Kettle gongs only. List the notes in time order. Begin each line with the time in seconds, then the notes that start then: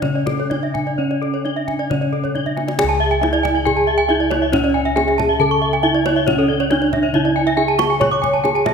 Already playing: C#4
0.02 C#3
0.50 D4
0.99 C#4
1.45 D4
1.90 C#3
2.35 D4
2.78 G#4
2.83 C#2
3.21 D4
4.08 D4
4.52 C#4
4.96 D4
5.40 C#3
5.83 D4
6.27 C#4
6.70 D4
7.14 C#3
7.57 D4
8.00 C#5
8.44 D4